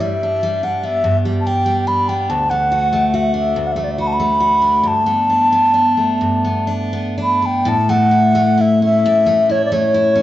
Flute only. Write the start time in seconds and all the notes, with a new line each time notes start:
0.01 E5
0.64 F#5
0.85 E5
1.40 A5
1.47 G5
1.88 B5
2.09 G5
2.30 A5
2.50 F#5
3.15 E5
3.37 E5
3.67 F#5
3.72 E5
3.84 D5
3.91 E5
4.01 B5
4.07 A5
4.13 B5
4.88 A5
7.23 B5
7.46 G5
7.68 A5
7.90 F#5
8.61 E5
8.84 E5
9.51 C#5
9.65 D5
9.73 C#5